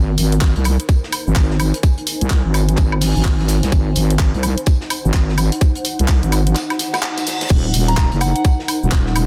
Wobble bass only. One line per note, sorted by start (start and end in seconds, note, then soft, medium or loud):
0.00 0.16 G#1 medium
0.18 0.54 G#1 medium
0.56 0.77 C2 medium
1.27 1.35 G#1 loud
1.36 1.72 G#1 loud
2.21 2.43 C2 loud
2.45 2.76 G#1 loud
2.78 3.14 G#1 loud
3.16 3.61 G#1 medium
3.63 3.71 C2 loud
3.72 3.94 G#1 medium
3.96 4.32 G#1 medium
4.34 4.55 C2 loud
5.05 5.13 G#1 medium
5.14 5.50 G#1 loud
5.99 6.21 C2 loud
6.23 6.54 G#1 loud
7.50 7.72 D#1 loud
7.74 8.10 D#1 medium
8.12 8.33 F#1 loud
8.83 8.90 D#1 loud
8.92 9.27 D#1 loud